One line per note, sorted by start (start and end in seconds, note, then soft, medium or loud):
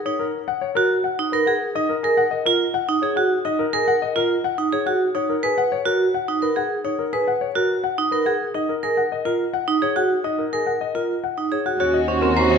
0.05 0.24 D#4 medium
0.05 0.24 C#5 medium
0.19 0.38 A#4 medium
0.48 0.66 F#5 medium
0.61 0.80 C#5 medium
0.75 0.95 F#4 medium
0.75 0.94 A#4 medium
1.04 1.23 F#5 medium
1.19 1.37 D#4 medium
1.32 1.51 A#4 medium
1.32 1.51 B4 soft
1.46 1.66 G#4 medium
1.46 1.65 F#5 soft
1.75 1.94 D#4 medium
1.75 1.94 D#5 medium
1.89 2.08 A#4 medium
2.03 2.22 G#4 medium
2.03 2.22 A#4 medium
2.17 2.36 F#5 medium
2.31 2.50 D#5 medium
2.46 2.65 F4 medium
2.46 2.64 A#4 medium
2.74 2.93 F#5 medium
2.89 3.07 D#4 medium
3.02 3.21 G#4 medium
3.02 3.21 C#5 medium
3.16 3.35 F#4 medium
3.16 3.35 F#5 medium
3.45 3.63 D#4 medium
3.45 3.64 D#5 medium
3.59 3.78 A#4 medium
3.73 3.92 G#4 medium
3.73 3.92 A#4 medium
3.88 4.06 F#5 medium
4.02 4.20 D#5 medium
4.16 4.34 F4 medium
4.16 4.34 A#4 medium
4.44 4.63 F#5 medium
4.58 4.77 D#4 medium
4.72 4.91 G#4 medium
4.72 4.91 C#5 medium
4.86 5.05 F#4 medium
4.86 5.05 F#5 medium
5.15 5.33 D#4 medium
5.15 5.33 C#5 medium
5.29 5.48 A#4 medium
5.43 5.62 G#4 medium
5.43 5.62 B4 medium
5.58 5.76 F#5 medium
5.72 5.90 C#5 medium
5.86 6.04 F#4 medium
5.86 6.04 A#4 medium
6.14 6.33 F#5 medium
6.28 6.47 D#4 medium
6.42 6.61 A#4 medium
6.42 6.61 B4 soft
6.56 6.75 G#4 medium
6.56 6.75 F#5 medium
6.84 7.03 D#4 medium
6.84 7.03 C#5 medium
6.99 7.17 A#4 soft
7.13 7.31 G#4 medium
7.13 7.31 B4 medium
7.28 7.46 F#5 medium
7.41 7.60 C#5 medium
7.55 7.74 F#4 medium
7.55 7.74 A#4 medium
7.84 8.02 F#5 medium
7.98 8.16 D#4 medium
8.11 8.31 A#4 medium
8.11 8.30 B4 soft
8.26 8.45 G#4 medium
8.26 8.45 F#5 soft
8.54 8.73 D#4 medium
8.54 8.73 D#5 medium
8.69 8.87 A#4 medium
8.83 9.01 G#4 medium
8.83 9.01 A#4 medium
8.97 9.16 F#5 medium
9.12 9.30 D#5 medium
9.25 9.44 F4 medium
9.25 9.44 A#4 medium
9.53 9.72 F#5 medium
9.68 9.86 D#4 medium
9.82 10.00 G#4 medium
9.82 10.00 C#5 medium
9.96 10.15 F#4 medium
9.96 10.15 F#5 medium
10.24 10.43 D#4 medium
10.24 10.43 D#5 soft
10.38 10.57 A#4 soft
10.53 10.71 G#4 medium
10.53 10.71 A#4 medium
10.66 10.85 F#5 soft
10.81 10.99 D#5 medium
10.95 11.13 F4 medium
10.95 11.13 A#4 medium
11.24 11.42 F#5 soft
11.37 11.56 D#4 medium
11.52 11.70 G#4 soft
11.52 11.70 C#5 soft
11.66 11.79 F#4 soft
11.66 11.84 F#5 soft
11.80 12.58 D#2 medium
11.80 12.58 C#4 medium
11.80 12.01 F#4 soft
11.80 11.98 F#4 medium
11.80 12.58 F#4 medium
11.80 11.98 C#5 medium
11.94 12.12 D#5 medium
12.08 12.27 C#4 medium
12.08 12.30 F#4 soft
12.08 12.27 C5 medium
12.21 12.41 C4 medium
12.21 12.41 A#4 medium
12.36 12.58 F#4 medium
12.36 12.55 C5 medium
12.36 12.55 A#5 medium
12.50 12.58 D#5 medium